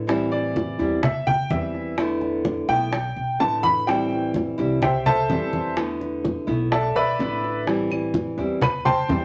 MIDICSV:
0, 0, Header, 1, 6, 480
1, 0, Start_track
1, 0, Key_signature, 0, "minor"
1, 0, Tempo, 473934
1, 85, Time_signature, 4, 2, 24, 8
1, 9367, End_track
2, 0, Start_track
2, 0, Title_t, "Grand piano"
2, 0, Program_c, 0, 0
2, 320, Note_on_c, 0, 74, 77
2, 1002, Note_off_c, 0, 74, 0
2, 1042, Note_on_c, 0, 76, 71
2, 1276, Note_off_c, 0, 76, 0
2, 1285, Note_on_c, 0, 79, 97
2, 1518, Note_off_c, 0, 79, 0
2, 1526, Note_on_c, 0, 76, 60
2, 1972, Note_off_c, 0, 76, 0
2, 2722, Note_on_c, 0, 79, 97
2, 3403, Note_off_c, 0, 79, 0
2, 3445, Note_on_c, 0, 81, 87
2, 3678, Note_off_c, 0, 81, 0
2, 3678, Note_on_c, 0, 83, 106
2, 3914, Note_off_c, 0, 83, 0
2, 3922, Note_on_c, 0, 79, 79
2, 4370, Note_off_c, 0, 79, 0
2, 4887, Note_on_c, 0, 79, 72
2, 4890, Note_on_c, 0, 67, 61
2, 4890, Note_on_c, 0, 76, 58
2, 4892, Note_on_c, 0, 72, 59
2, 5114, Note_off_c, 0, 76, 0
2, 5115, Note_off_c, 0, 72, 0
2, 5119, Note_off_c, 0, 79, 0
2, 5121, Note_off_c, 0, 67, 0
2, 5126, Note_on_c, 0, 81, 99
2, 5127, Note_on_c, 0, 69, 70
2, 5129, Note_on_c, 0, 76, 76
2, 5130, Note_on_c, 0, 72, 68
2, 5805, Note_off_c, 0, 81, 0
2, 5806, Note_off_c, 0, 69, 0
2, 5807, Note_off_c, 0, 72, 0
2, 5807, Note_off_c, 0, 76, 0
2, 6804, Note_on_c, 0, 81, 72
2, 6806, Note_on_c, 0, 74, 59
2, 6808, Note_on_c, 0, 69, 60
2, 6808, Note_on_c, 0, 76, 60
2, 7033, Note_off_c, 0, 74, 0
2, 7035, Note_off_c, 0, 76, 0
2, 7038, Note_off_c, 0, 81, 0
2, 7040, Note_off_c, 0, 69, 0
2, 7046, Note_on_c, 0, 83, 87
2, 7048, Note_on_c, 0, 74, 71
2, 7050, Note_on_c, 0, 71, 70
2, 7050, Note_on_c, 0, 76, 76
2, 7726, Note_off_c, 0, 83, 0
2, 7727, Note_off_c, 0, 74, 0
2, 7727, Note_off_c, 0, 76, 0
2, 7728, Note_off_c, 0, 71, 0
2, 8729, Note_on_c, 0, 83, 75
2, 8730, Note_on_c, 0, 71, 60
2, 8960, Note_off_c, 0, 83, 0
2, 8961, Note_off_c, 0, 71, 0
2, 8966, Note_on_c, 0, 84, 86
2, 8968, Note_on_c, 0, 72, 71
2, 8970, Note_on_c, 0, 79, 74
2, 8971, Note_on_c, 0, 81, 73
2, 9367, Note_off_c, 0, 72, 0
2, 9367, Note_off_c, 0, 79, 0
2, 9367, Note_off_c, 0, 81, 0
2, 9367, Note_off_c, 0, 84, 0
2, 9367, End_track
3, 0, Start_track
3, 0, Title_t, "Nylon-string guitar"
3, 0, Program_c, 1, 24
3, 72, Note_on_c, 1, 52, 63
3, 82, Note_on_c, 1, 55, 69
3, 85, Note_on_c, 1, 60, 73
3, 90, Note_on_c, 1, 64, 76
3, 794, Note_off_c, 1, 55, 0
3, 795, Note_off_c, 1, 60, 0
3, 795, Note_off_c, 1, 64, 0
3, 799, Note_on_c, 1, 64, 69
3, 811, Note_on_c, 1, 60, 66
3, 817, Note_on_c, 1, 55, 58
3, 1033, Note_off_c, 1, 64, 0
3, 1035, Note_off_c, 1, 55, 0
3, 1036, Note_off_c, 1, 60, 0
3, 1040, Note_off_c, 1, 52, 0
3, 1523, Note_on_c, 1, 52, 48
3, 1527, Note_on_c, 1, 55, 45
3, 1535, Note_on_c, 1, 60, 48
3, 1539, Note_on_c, 1, 64, 49
3, 1994, Note_off_c, 1, 52, 0
3, 1996, Note_off_c, 1, 55, 0
3, 2000, Note_off_c, 1, 60, 0
3, 2002, Note_off_c, 1, 64, 0
3, 2004, Note_on_c, 1, 50, 66
3, 2007, Note_on_c, 1, 57, 72
3, 2015, Note_on_c, 1, 59, 77
3, 2020, Note_on_c, 1, 64, 84
3, 2714, Note_off_c, 1, 59, 0
3, 2715, Note_off_c, 1, 50, 0
3, 2715, Note_off_c, 1, 64, 0
3, 2719, Note_on_c, 1, 64, 64
3, 2727, Note_on_c, 1, 59, 67
3, 2728, Note_off_c, 1, 57, 0
3, 2732, Note_on_c, 1, 57, 52
3, 2952, Note_off_c, 1, 57, 0
3, 2952, Note_off_c, 1, 64, 0
3, 2953, Note_off_c, 1, 59, 0
3, 3434, Note_on_c, 1, 50, 48
3, 3445, Note_on_c, 1, 57, 49
3, 3448, Note_on_c, 1, 59, 52
3, 3454, Note_on_c, 1, 64, 51
3, 3910, Note_off_c, 1, 50, 0
3, 3915, Note_off_c, 1, 57, 0
3, 3916, Note_on_c, 1, 52, 61
3, 3917, Note_off_c, 1, 59, 0
3, 3920, Note_off_c, 1, 64, 0
3, 3921, Note_on_c, 1, 55, 72
3, 3925, Note_on_c, 1, 60, 74
3, 3931, Note_on_c, 1, 64, 75
3, 4633, Note_off_c, 1, 64, 0
3, 4634, Note_off_c, 1, 55, 0
3, 4636, Note_off_c, 1, 60, 0
3, 4637, Note_on_c, 1, 64, 74
3, 4646, Note_on_c, 1, 60, 62
3, 4650, Note_on_c, 1, 55, 59
3, 4867, Note_off_c, 1, 55, 0
3, 4871, Note_off_c, 1, 60, 0
3, 4871, Note_off_c, 1, 64, 0
3, 4872, Note_off_c, 1, 52, 0
3, 5352, Note_on_c, 1, 52, 49
3, 5358, Note_on_c, 1, 55, 47
3, 5364, Note_on_c, 1, 60, 54
3, 5368, Note_on_c, 1, 64, 53
3, 5829, Note_off_c, 1, 52, 0
3, 5832, Note_off_c, 1, 55, 0
3, 5835, Note_off_c, 1, 60, 0
3, 5837, Note_off_c, 1, 64, 0
3, 5837, Note_on_c, 1, 50, 66
3, 5843, Note_on_c, 1, 57, 67
3, 5846, Note_on_c, 1, 59, 75
3, 5850, Note_on_c, 1, 64, 68
3, 6548, Note_off_c, 1, 64, 0
3, 6550, Note_off_c, 1, 59, 0
3, 6552, Note_off_c, 1, 50, 0
3, 6552, Note_on_c, 1, 64, 72
3, 6562, Note_on_c, 1, 59, 67
3, 6566, Note_off_c, 1, 57, 0
3, 6570, Note_on_c, 1, 57, 59
3, 6789, Note_off_c, 1, 64, 0
3, 6794, Note_off_c, 1, 57, 0
3, 6794, Note_off_c, 1, 59, 0
3, 7279, Note_on_c, 1, 50, 41
3, 7286, Note_on_c, 1, 57, 49
3, 7293, Note_on_c, 1, 59, 53
3, 7296, Note_on_c, 1, 64, 49
3, 7753, Note_off_c, 1, 50, 0
3, 7756, Note_off_c, 1, 57, 0
3, 7760, Note_off_c, 1, 59, 0
3, 7761, Note_off_c, 1, 64, 0
3, 7768, Note_on_c, 1, 52, 69
3, 7771, Note_on_c, 1, 55, 72
3, 7781, Note_on_c, 1, 60, 71
3, 7783, Note_on_c, 1, 64, 66
3, 8479, Note_off_c, 1, 55, 0
3, 8484, Note_off_c, 1, 60, 0
3, 8488, Note_off_c, 1, 64, 0
3, 8492, Note_on_c, 1, 64, 64
3, 8500, Note_on_c, 1, 60, 59
3, 8509, Note_on_c, 1, 55, 57
3, 8719, Note_off_c, 1, 64, 0
3, 8720, Note_off_c, 1, 55, 0
3, 8724, Note_off_c, 1, 60, 0
3, 8725, Note_off_c, 1, 52, 0
3, 9208, Note_on_c, 1, 52, 45
3, 9215, Note_on_c, 1, 55, 51
3, 9217, Note_on_c, 1, 60, 50
3, 9225, Note_on_c, 1, 64, 54
3, 9367, Note_off_c, 1, 52, 0
3, 9367, Note_off_c, 1, 55, 0
3, 9367, Note_off_c, 1, 60, 0
3, 9367, Note_off_c, 1, 64, 0
3, 9367, End_track
4, 0, Start_track
4, 0, Title_t, "Upright bass"
4, 0, Program_c, 2, 32
4, 0, Note_on_c, 2, 45, 88
4, 740, Note_off_c, 2, 45, 0
4, 804, Note_on_c, 2, 40, 91
4, 1484, Note_off_c, 2, 40, 0
4, 1524, Note_on_c, 2, 40, 88
4, 2660, Note_off_c, 2, 40, 0
4, 2720, Note_on_c, 2, 35, 93
4, 3168, Note_off_c, 2, 35, 0
4, 3203, Note_on_c, 2, 35, 68
4, 3427, Note_off_c, 2, 35, 0
4, 3452, Note_on_c, 2, 33, 81
4, 4584, Note_off_c, 2, 33, 0
4, 4646, Note_on_c, 2, 36, 95
4, 5325, Note_off_c, 2, 36, 0
4, 5364, Note_on_c, 2, 40, 89
4, 6500, Note_off_c, 2, 40, 0
4, 6559, Note_on_c, 2, 35, 96
4, 7008, Note_off_c, 2, 35, 0
4, 7041, Note_on_c, 2, 35, 67
4, 7266, Note_off_c, 2, 35, 0
4, 7284, Note_on_c, 2, 33, 85
4, 8421, Note_off_c, 2, 33, 0
4, 8483, Note_on_c, 2, 40, 92
4, 9164, Note_off_c, 2, 40, 0
4, 9201, Note_on_c, 2, 40, 86
4, 9367, Note_off_c, 2, 40, 0
4, 9367, End_track
5, 0, Start_track
5, 0, Title_t, "Muted nylon-string guitar strokes"
5, 1044, Note_on_c, 9, 29, 57
5, 1145, Note_off_c, 9, 29, 0
5, 2961, Note_on_c, 9, 29, 63
5, 3062, Note_off_c, 9, 29, 0
5, 4876, Note_on_c, 9, 29, 60
5, 4977, Note_off_c, 9, 29, 0
5, 6802, Note_on_c, 9, 29, 53
5, 6903, Note_off_c, 9, 29, 0
5, 8729, Note_on_c, 9, 29, 61
5, 8831, Note_off_c, 9, 29, 0
5, 9367, End_track
6, 0, Start_track
6, 0, Title_t, "Drums"
6, 88, Note_on_c, 9, 63, 32
6, 92, Note_on_c, 9, 60, 62
6, 189, Note_off_c, 9, 63, 0
6, 193, Note_off_c, 9, 60, 0
6, 330, Note_on_c, 9, 63, 33
6, 335, Note_on_c, 9, 60, 34
6, 431, Note_off_c, 9, 63, 0
6, 436, Note_off_c, 9, 60, 0
6, 568, Note_on_c, 9, 63, 58
6, 574, Note_on_c, 9, 60, 56
6, 669, Note_off_c, 9, 63, 0
6, 675, Note_off_c, 9, 60, 0
6, 807, Note_on_c, 9, 60, 31
6, 808, Note_on_c, 9, 63, 31
6, 908, Note_off_c, 9, 60, 0
6, 909, Note_off_c, 9, 63, 0
6, 1045, Note_on_c, 9, 60, 68
6, 1047, Note_on_c, 9, 63, 32
6, 1047, Note_on_c, 9, 64, 77
6, 1146, Note_off_c, 9, 60, 0
6, 1149, Note_off_c, 9, 63, 0
6, 1149, Note_off_c, 9, 64, 0
6, 1289, Note_on_c, 9, 63, 33
6, 1289, Note_on_c, 9, 64, 70
6, 1390, Note_off_c, 9, 63, 0
6, 1390, Note_off_c, 9, 64, 0
6, 1523, Note_on_c, 9, 63, 78
6, 1526, Note_on_c, 9, 60, 30
6, 1526, Note_on_c, 9, 61, 73
6, 1624, Note_off_c, 9, 63, 0
6, 1627, Note_off_c, 9, 60, 0
6, 1627, Note_off_c, 9, 61, 0
6, 1769, Note_on_c, 9, 60, 35
6, 1870, Note_off_c, 9, 60, 0
6, 2003, Note_on_c, 9, 60, 63
6, 2006, Note_on_c, 9, 63, 30
6, 2105, Note_off_c, 9, 60, 0
6, 2107, Note_off_c, 9, 63, 0
6, 2241, Note_on_c, 9, 63, 34
6, 2243, Note_on_c, 9, 60, 33
6, 2342, Note_off_c, 9, 63, 0
6, 2344, Note_off_c, 9, 60, 0
6, 2480, Note_on_c, 9, 60, 59
6, 2480, Note_on_c, 9, 63, 59
6, 2581, Note_off_c, 9, 60, 0
6, 2581, Note_off_c, 9, 63, 0
6, 2720, Note_on_c, 9, 60, 32
6, 2821, Note_off_c, 9, 60, 0
6, 2963, Note_on_c, 9, 60, 65
6, 2966, Note_on_c, 9, 63, 34
6, 3065, Note_off_c, 9, 60, 0
6, 3067, Note_off_c, 9, 63, 0
6, 3206, Note_on_c, 9, 63, 34
6, 3308, Note_off_c, 9, 63, 0
6, 3446, Note_on_c, 9, 60, 32
6, 3446, Note_on_c, 9, 61, 80
6, 3446, Note_on_c, 9, 63, 31
6, 3547, Note_off_c, 9, 60, 0
6, 3547, Note_off_c, 9, 61, 0
6, 3547, Note_off_c, 9, 63, 0
6, 3682, Note_on_c, 9, 63, 65
6, 3695, Note_on_c, 9, 60, 34
6, 3784, Note_off_c, 9, 63, 0
6, 3796, Note_off_c, 9, 60, 0
6, 3921, Note_on_c, 9, 63, 31
6, 3938, Note_on_c, 9, 60, 69
6, 4022, Note_off_c, 9, 63, 0
6, 4039, Note_off_c, 9, 60, 0
6, 4161, Note_on_c, 9, 63, 35
6, 4179, Note_on_c, 9, 60, 33
6, 4263, Note_off_c, 9, 63, 0
6, 4280, Note_off_c, 9, 60, 0
6, 4398, Note_on_c, 9, 63, 59
6, 4416, Note_on_c, 9, 60, 57
6, 4499, Note_off_c, 9, 63, 0
6, 4517, Note_off_c, 9, 60, 0
6, 4636, Note_on_c, 9, 63, 34
6, 4658, Note_on_c, 9, 60, 33
6, 4738, Note_off_c, 9, 63, 0
6, 4759, Note_off_c, 9, 60, 0
6, 4880, Note_on_c, 9, 63, 36
6, 4880, Note_on_c, 9, 64, 82
6, 4887, Note_on_c, 9, 60, 67
6, 4981, Note_off_c, 9, 63, 0
6, 4981, Note_off_c, 9, 64, 0
6, 4988, Note_off_c, 9, 60, 0
6, 5125, Note_on_c, 9, 63, 32
6, 5125, Note_on_c, 9, 64, 70
6, 5226, Note_off_c, 9, 63, 0
6, 5226, Note_off_c, 9, 64, 0
6, 5365, Note_on_c, 9, 63, 82
6, 5370, Note_on_c, 9, 60, 32
6, 5370, Note_on_c, 9, 61, 79
6, 5466, Note_off_c, 9, 63, 0
6, 5471, Note_off_c, 9, 60, 0
6, 5471, Note_off_c, 9, 61, 0
6, 5601, Note_on_c, 9, 63, 67
6, 5608, Note_on_c, 9, 60, 33
6, 5702, Note_off_c, 9, 63, 0
6, 5709, Note_off_c, 9, 60, 0
6, 5843, Note_on_c, 9, 60, 68
6, 5849, Note_on_c, 9, 63, 35
6, 5944, Note_off_c, 9, 60, 0
6, 5950, Note_off_c, 9, 63, 0
6, 6086, Note_on_c, 9, 60, 31
6, 6091, Note_on_c, 9, 63, 34
6, 6187, Note_off_c, 9, 60, 0
6, 6193, Note_off_c, 9, 63, 0
6, 6325, Note_on_c, 9, 60, 56
6, 6332, Note_on_c, 9, 63, 57
6, 6426, Note_off_c, 9, 60, 0
6, 6433, Note_off_c, 9, 63, 0
6, 6563, Note_on_c, 9, 60, 30
6, 6664, Note_off_c, 9, 60, 0
6, 6804, Note_on_c, 9, 63, 31
6, 6806, Note_on_c, 9, 60, 71
6, 6906, Note_off_c, 9, 63, 0
6, 6907, Note_off_c, 9, 60, 0
6, 7052, Note_on_c, 9, 63, 35
6, 7153, Note_off_c, 9, 63, 0
6, 7292, Note_on_c, 9, 63, 34
6, 7295, Note_on_c, 9, 60, 33
6, 7295, Note_on_c, 9, 61, 80
6, 7393, Note_off_c, 9, 63, 0
6, 7396, Note_off_c, 9, 60, 0
6, 7396, Note_off_c, 9, 61, 0
6, 7538, Note_on_c, 9, 60, 34
6, 7639, Note_off_c, 9, 60, 0
6, 7768, Note_on_c, 9, 63, 33
6, 7772, Note_on_c, 9, 60, 60
6, 7870, Note_off_c, 9, 63, 0
6, 7874, Note_off_c, 9, 60, 0
6, 8007, Note_on_c, 9, 63, 36
6, 8016, Note_on_c, 9, 60, 33
6, 8017, Note_on_c, 9, 75, 58
6, 8108, Note_off_c, 9, 63, 0
6, 8117, Note_off_c, 9, 60, 0
6, 8118, Note_off_c, 9, 75, 0
6, 8244, Note_on_c, 9, 63, 58
6, 8254, Note_on_c, 9, 60, 52
6, 8345, Note_off_c, 9, 63, 0
6, 8355, Note_off_c, 9, 60, 0
6, 8485, Note_on_c, 9, 63, 31
6, 8497, Note_on_c, 9, 60, 31
6, 8586, Note_off_c, 9, 63, 0
6, 8598, Note_off_c, 9, 60, 0
6, 8725, Note_on_c, 9, 63, 34
6, 8725, Note_on_c, 9, 64, 81
6, 8734, Note_on_c, 9, 60, 60
6, 8745, Note_on_c, 9, 75, 60
6, 8826, Note_off_c, 9, 63, 0
6, 8826, Note_off_c, 9, 64, 0
6, 8836, Note_off_c, 9, 60, 0
6, 8846, Note_off_c, 9, 75, 0
6, 8969, Note_on_c, 9, 63, 33
6, 8969, Note_on_c, 9, 64, 72
6, 9070, Note_off_c, 9, 63, 0
6, 9070, Note_off_c, 9, 64, 0
6, 9209, Note_on_c, 9, 63, 82
6, 9214, Note_on_c, 9, 60, 31
6, 9214, Note_on_c, 9, 61, 80
6, 9310, Note_off_c, 9, 63, 0
6, 9315, Note_off_c, 9, 60, 0
6, 9315, Note_off_c, 9, 61, 0
6, 9367, End_track
0, 0, End_of_file